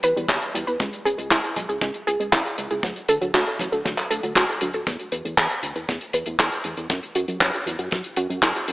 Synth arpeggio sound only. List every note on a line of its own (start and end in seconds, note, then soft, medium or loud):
0.04 0.16 B4 loud
0.16 0.25 G3 medium
0.29 0.38 G4 medium
0.55 0.67 G3 medium
0.67 0.73 B4 medium
0.80 0.92 G#3 medium
1.05 1.17 G#4 loud
1.18 1.27 G#3 medium
1.31 1.40 E4 medium
1.56 1.68 G#3 medium
1.69 1.74 G#4 medium
1.82 1.94 G#3 medium
2.07 2.19 G#4 loud
2.20 2.29 G#3 medium
2.33 2.41 E4 medium
2.58 2.70 G#3 medium
2.71 2.76 G#4 medium
2.83 2.95 F#3 medium
3.09 3.21 A4 loud
3.21 3.30 F#3 medium
3.34 3.43 F#4 medium
3.60 3.72 F#3 medium
3.72 3.78 A4 medium
3.85 3.97 F#3 medium
4.10 4.23 A4 loud
4.23 4.32 F#3 medium
4.36 4.45 F#4 medium
4.62 4.73 F#3 medium
4.74 4.79 A4 medium
4.87 4.99 A3 medium
5.12 5.24 B4 loud
5.25 5.34 A3 medium
5.38 5.47 A4 medium
5.63 5.75 A3 medium
5.76 5.81 B4 medium
5.88 6.01 A3 medium
6.14 6.26 B4 loud
6.27 6.35 A3 medium
6.39 6.48 A4 medium
6.65 6.77 A3 medium
6.77 6.83 B4 medium
6.90 7.02 F#3 medium
7.15 7.28 F#4 loud
7.28 7.37 F#3 medium
7.41 7.50 E4 medium
7.66 7.78 F#3 medium
7.79 7.84 F#4 medium
7.92 8.04 F#3 medium
8.17 8.29 F#4 loud
8.30 8.39 F#3 medium
8.42 8.51 E4 medium
8.68 8.72 F#3 medium